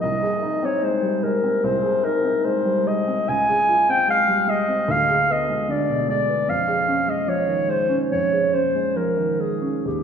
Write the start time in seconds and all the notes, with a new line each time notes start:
0.01 C2 D#5
0.22 G#4
0.42 D#4
0.63 C4 C#5
0.82 G#3 C5
1.02 G3
1.23 G#3 A#4
1.44 C4
1.64 C2 C5
1.83 G#4
2.03 D#4 A#4
2.24 C4
2.44 G#3 C5
2.65 G3
2.86 G#3 D#5
3.07 C4
3.28 C#2 G#5
3.49 G#4
3.68 F4
3.88 C4 G5
4.08 G#3 F5
4.28 G3
4.47 G#3 D#5
4.68 C4
4.88 D2 F5
5.09 G#4
5.29 B3 D#5
5.49 G#3
5.68 D3 D5
5.89 B2
6.08 G#3 D5
6.29 B3
6.48 F2 F5
6.68 G#4
6.88 C#4
7.08 G#3 D#5
7.27 F3 C#5
7.47 D#3
7.68 G#3 C5
7.89 C#4
8.11 F2 C#5
8.32 G#4
8.54 C#4 C5
8.75 G#3
8.96 F3 A#4
9.17 D#3
9.39 G#3 G#4
9.62 C#4
9.85 D#2 G4